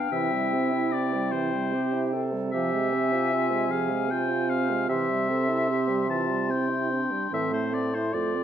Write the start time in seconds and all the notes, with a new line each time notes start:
Already playing: B3 D4 F5 G5
0.12 C3 E3 E4 E5
0.33 G3
0.54 C4
0.73 E4
0.92 C4 D5
1.13 G3
1.32 E3 C5
1.53 G3
1.73 C4 G4
1.93 E4
2.13 C4 A4
2.33 G3
2.52 F3 G4 E5 G#5
2.73 G#3
2.93 C4
3.13 F4
3.33 C4 F4
3.52 G#3
3.70 F3 G#4 F5
3.90 G#3
4.09 C4 F4 G5
4.29 F4
4.49 C4 F5
4.70 G#3
4.89 C3 E3 G4 E5 C6
5.10 G3
5.30 C4 A4
5.49 E4
5.69 C4 G4
5.88 G3
6.08 E3 F4 A5
6.30 G3
6.50 C4 E4 G5
6.70 E4
6.90 C4 D4
7.11 G3
7.31 A2 E3 C4 E5
7.52 A3 C5
7.73 C4 D5
7.94 E4 C5
8.13 F2 A3 F4 D5
8.35 C4